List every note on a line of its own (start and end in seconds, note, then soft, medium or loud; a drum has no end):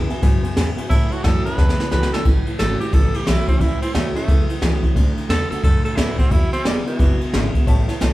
0.00 0.20 E2 medium
0.00 0.20 E3 loud
0.09 0.21 E2 medium
0.09 0.21 B2 medium
0.09 0.23 B3 soft
0.09 0.22 E4 medium
0.09 0.17 B4 medium
0.09 0.17 E5 medium
0.09 0.18 G#5 loud
0.09 muted upright bass stroke medium
0.09 ride medium
0.21 0.41 E2 medium
0.21 0.55 F#2 loud
0.21 0.43 G#2 loud
0.21 0.41 B2 medium
0.21 0.34 B4 loud
0.21 0.35 E5 loud
0.21 0.35 G#5 loud
0.21 kick loud
0.21 snare soft
0.21 ride medium
0.43 0.55 E2 medium
0.43 0.55 B2 medium
0.43 0.51 B4 medium
0.43 0.51 E5 medium
0.43 0.51 G#5 loud
0.43 muted upright bass stroke medium
0.43 ride medium
0.55 0.75 E2 medium
0.55 0.77 E2 medium
0.55 0.89 G#2 loud
0.55 0.75 C#3 medium
0.55 0.68 B4 medium
0.55 0.68 E5 medium
0.55 0.69 G#5 loud
0.55 snare loud
0.55 ride loud
0.76 0.88 E2 medium
0.76 0.89 B2 medium
0.76 0.84 B4 loud
0.76 0.85 E5 medium
0.76 0.85 G#5 loud
0.76 muted upright bass stroke medium
0.76 ride medium
0.89 1.09 A2 medium
0.89 1.11 A2 loud
0.89 1.56 A2 medium
0.89 1.09 E3 loud
0.89 1.13 E4 loud
0.89 1.02 C#5 loud
0.89 1.02 E5 medium
0.89 1.03 A5 loud
0.89 kick loud
0.89 ride medium
1.10 1.22 A2 medium
1.10 1.23 E3 medium
1.10 1.25 F#4 medium
1.10 1.18 C#5 medium
1.10 1.19 E5 medium
1.10 1.19 A5 medium
1.10 muted upright bass stroke medium
1.10 ride medium
1.24 1.45 F#2 medium
1.24 1.43 A2 medium
1.24 1.44 E3 medium
1.24 1.43 F#3 loud
1.24 1.45 A3 medium
1.24 1.45 C#4 medium
1.24 1.44 E4 loud
1.24 1.44 A4 loud
1.24 1.36 C#5 medium
1.24 1.37 E5 medium
1.24 1.37 A5 medium
1.24 kick medium
1.24 snare loud
1.24 ride medium
1.44 1.56 A2 medium
1.44 1.56 E3 medium
1.44 1.58 C#4 soft
1.44 1.57 E4 medium
1.44 1.90 B4 medium
1.44 1.52 C#5 medium
1.44 1.53 E5 medium
1.44 1.53 A5 medium
1.44 muted upright bass stroke medium
1.44 ride medium
1.57 1.78 E2 medium
1.57 2.23 E2 medium
1.57 1.76 A2 medium
1.57 1.77 E3 medium
1.57 1.70 C#5 medium
1.57 1.70 E5 medium
1.57 1.71 A5 loud
1.57 kick loud
1.57 snare medium
1.69 snare medium
1.78 1.90 A2 medium
1.78 1.91 E3 medium
1.78 1.86 C#5 medium
1.78 1.87 A5 medium
1.78 muted upright bass stroke medium
1.78 snare medium
1.91 2.12 C#2 medium
1.91 2.10 A2 medium
1.91 2.11 E3 loud
1.91 2.11 F#3 loud
1.91 2.12 A3 loud
1.91 2.12 C#4 medium
1.91 2.11 E4 loud
1.91 2.12 B4 loud
1.91 2.04 C#5 medium
1.91 2.04 E5 medium
1.91 2.04 A5 medium
1.91 snare medium
2.03 snare loud
2.12 2.24 A2 medium
2.12 2.24 E3 medium
2.12 2.26 C#4 soft
2.12 2.25 E4 medium
2.12 2.25 A4 medium
2.12 2.20 C#5 medium
2.12 2.20 E5 medium
2.12 2.20 A5 medium
2.12 muted upright bass stroke medium
2.12 snare medium
2.25 2.46 A1 loud
2.25 2.90 A2 medium
2.25 2.44 A2 medium
2.25 2.45 E3 loud
2.25 kick loud
2.25 crash medium
2.46 2.58 A2 medium
2.46 2.58 E3 medium
2.46 muted upright bass stroke medium
2.46 ride medium
2.58 2.80 G#1 medium
2.58 2.78 A2 medium
2.58 2.79 E3 medium
2.58 2.79 F#3 medium
2.58 2.80 A3 medium
2.58 2.80 C#4 loud
2.58 2.79 E4 medium
2.58 2.79 A4 loud
2.58 snare loud
2.58 ride medium
2.80 2.91 A2 medium
2.80 2.92 E3 medium
2.80 2.93 C#4 soft
2.80 2.92 E4 medium
2.80 2.95 G4 medium
2.80 muted upright bass stroke medium
2.80 ride medium
2.92 3.13 A1 medium
2.92 3.58 E2 loud
2.92 3.12 A2 medium
2.92 3.12 E3 medium
2.92 3.17 A4 medium
2.92 kick loud
2.92 ride medium
3.14 3.26 A2 medium
3.14 3.26 E3 medium
3.14 3.29 G4 medium
3.14 muted upright bass stroke medium
3.14 ride medium
3.26 3.47 B1 medium
3.26 3.46 A2 medium
3.26 3.47 E3 loud
3.26 3.46 F#3 loud
3.26 3.47 A3 medium
3.26 3.48 C#4 medium
3.26 3.48 E4 medium
3.26 3.46 E4 loud
3.26 snare loud
3.26 ride loud
3.47 3.60 A2 medium
3.47 3.60 E3 medium
3.47 3.63 C4 medium
3.47 3.61 C#4 soft
3.47 3.60 E4 medium
3.47 muted upright bass stroke medium
3.47 kick medium
3.47 ride medium
3.61 3.81 C#2 medium
3.61 3.80 A2 medium
3.61 4.26 A2 medium
3.61 3.80 E3 loud
3.61 3.81 E4 medium
3.61 kick loud
3.61 ride medium
3.82 3.93 A2 medium
3.82 3.94 E3 medium
3.82 3.94 C4 medium
3.82 muted upright bass stroke medium
3.82 snare soft
3.82 ride medium
3.93 4.15 D2 medium
3.93 4.13 A2 medium
3.93 4.14 E3 medium
3.93 4.14 F#3 loud
3.93 4.15 A3 medium
3.93 4.15 C#4 medium
3.93 4.14 E4 medium
3.93 snare loud
3.93 ride medium
4.15 4.26 A2 medium
4.15 4.27 E3 medium
4.15 4.49 A3 medium
4.15 4.29 C#4 soft
4.15 4.28 E4 medium
4.15 muted upright bass stroke medium
4.15 ride medium
4.27 4.93 E2 medium
4.27 4.48 E2 loud
4.27 4.47 A2 medium
4.27 4.47 E3 medium
4.27 kick loud
4.27 ride medium
4.48 4.60 A2 medium
4.48 4.61 E3 medium
4.48 muted upright bass stroke soft
4.48 ride medium
4.61 4.83 C#2 loud
4.61 4.81 A2 medium
4.61 4.82 E3 medium
4.61 4.81 F#3 medium
4.61 4.82 A3 loud
4.61 4.83 C#4 loud
4.61 4.81 E4 loud
4.61 snare loud
4.61 ride medium
4.82 4.94 A2 medium
4.82 4.94 E3 medium
4.82 4.96 C#4 soft
4.82 4.95 E4 medium
4.82 muted upright bass stroke medium
4.82 kick medium
4.82 ride medium
4.95 5.16 D2 loud
4.95 5.15 D3 medium
4.95 5.28 D3 medium
4.95 5.15 A3 loud
4.95 kick loud
4.95 ride medium
5.16 5.28 D3 medium
5.16 5.28 A3 medium
5.16 muted upright bass stroke medium
5.16 ride medium
5.29 5.50 E2 medium
5.29 5.49 D3 medium
5.29 5.50 D3 medium
5.29 5.50 A3 medium
5.29 5.49 B3 loud
5.29 5.51 D4 medium
5.29 5.49 F#4 loud
5.29 5.50 A4 loud
5.29 snare loud
5.29 ride medium
5.50 5.62 D3 medium
5.50 5.62 A3 medium
5.50 5.64 D4 soft
5.50 5.63 F#4 medium
5.50 5.63 A4 medium
5.50 muted upright bass stroke medium
5.50 ride medium
5.63 5.84 F#2 medium
5.63 6.29 A2 medium
5.63 5.83 D3 medium
5.63 5.83 A3 medium
5.63 5.84 A4 medium
5.63 kick loud
5.63 ride loud
5.85 5.96 D3 medium
5.85 5.97 A3 medium
5.85 5.98 A4 medium
5.85 muted upright bass stroke medium
5.85 ride medium
5.96 6.18 D2 loud
5.96 6.18 D3 loud
5.96 6.17 D3 medium
5.96 6.18 A3 medium
5.96 6.17 B3 loud
5.96 6.18 D4 loud
5.96 6.18 E4 medium
5.96 6.16 F#4 loud
5.96 snare loud
5.96 ride medium
6.18 6.30 D3 medium
6.18 6.31 A3 medium
6.18 6.33 C4 medium
6.18 6.32 D4 soft
6.18 6.30 F#4 medium
6.18 muted upright bass stroke medium
6.18 kick medium
6.18 ride medium
6.31 6.51 E2 medium
6.31 6.97 E2 medium
6.31 6.52 E2 loud
6.31 6.51 B2 medium
6.31 6.52 E4 medium
6.31 kick loud
6.31 ride medium
6.53 6.64 E2 medium
6.53 6.64 B2 medium
6.53 6.67 C4 loud
6.53 muted upright bass stroke medium
6.53 snare soft
6.53 ride medium
6.64 6.85 E1 medium
6.64 6.84 E2 medium
6.64 6.85 C#3 medium
6.64 6.85 D3 medium
6.64 6.86 G3 medium
6.64 6.86 G#3 loud
6.64 6.86 B3 medium
6.64 6.85 E4 loud
6.64 snare loud
6.64 ride medium
6.86 6.98 E2 medium
6.86 6.98 B2 medium
6.86 7.20 E3 medium
6.86 7.00 B3 soft
6.86 6.99 E4 medium
6.86 muted upright bass stroke soft
6.86 ride medium
6.99 7.20 F#1 medium
6.99 7.18 E2 medium
6.99 7.65 B2 loud
6.99 7.19 B2 medium
6.99 kick loud
6.99 ride loud
7.21 7.31 E2 medium
7.21 7.32 B2 medium
7.21 muted upright bass stroke medium
7.21 ride medium
7.32 7.54 G#1 medium
7.32 7.52 E2 medium
7.32 7.52 C#3 loud
7.32 7.53 D3 loud
7.32 7.54 G#3 medium
7.32 7.54 B3 loud
7.32 7.53 E4 loud
7.32 snare loud
7.32 ride medium
7.54 7.66 E2 medium
7.54 7.66 B2 medium
7.54 7.68 B3 medium
7.54 7.67 E4 medium
7.54 muted upright bass stroke medium
7.54 kick medium
7.54 ride medium
7.66 7.87 A1 loud
7.66 7.86 A2 medium
7.66 8.13 A2 medium
7.66 7.86 E3 medium
7.66 7.80 C#5 loud
7.66 7.80 E5 loud
7.66 7.80 A5 loud
7.66 kick loud
7.66 ride medium
7.88 8.00 A2 medium
7.88 8.00 E3 medium
7.88 7.96 C#5 medium
7.88 7.96 E5 medium
7.88 7.96 A5 loud
7.88 muted upright bass stroke medium
7.88 snare soft
7.88 ride medium
8.00 8.13 B1 medium
8.00 8.13 A2 medium
8.00 8.13 E3 medium
8.00 8.13 F#3 loud
8.00 8.13 A3 medium
8.00 8.13 C#4 medium
8.00 8.13 E4 medium
8.00 8.13 C#5 medium
8.00 8.13 E5 medium
8.00 8.13 A5 loud
8.00 snare loud
8.00 ride medium